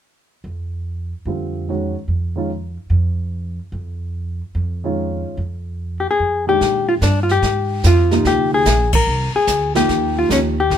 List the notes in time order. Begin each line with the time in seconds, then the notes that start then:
0.44 F2
1.25 F2 D3 G3 C4 F4
1.69 D#3 G#3 C#4 F#4
2.08 F2
2.36 D#3 G#3 C#4 F4
2.90 F2
3.72 F2
4.55 F2
4.84 D#3 G#3 C#4 F4
5.37 F2
6.00 G4
6.11 G#4
6.20 F2
6.47 D#3 G#3 D4 G4
6.61 A#2, brush sweep, kick, snare
6.89 F4
7.01 G2 D4, kick, snare, hi-hat pedal
7.23 F4
7.29 G4, snare
7.42 G#2, brush sweep, kick, snare
7.84 F2 F4, kick, snare, hi-hat pedal
8.11 C3 F3 A#3 D#4, snare
8.25 D2 G4, brush sweep, kick, snare
8.54 G#4
8.65 A#1, kick, snare, hi-hat pedal
8.93 A#4, kick, ride
9.07 C2, brush sweep
9.35 G#4, muted upright bass stroke
9.47 D2, kick, snare, hi-hat pedal
9.75 F3 A#3 D#4 G4, snare
9.89 D#2, brush sweep, kick, snare
10.19 F4
10.29 D#2 F3 A#3 C#4 D#4 G4, kick, snare, hi-hat pedal
10.60 G4
10.70 C#2, brush sweep, kick, snare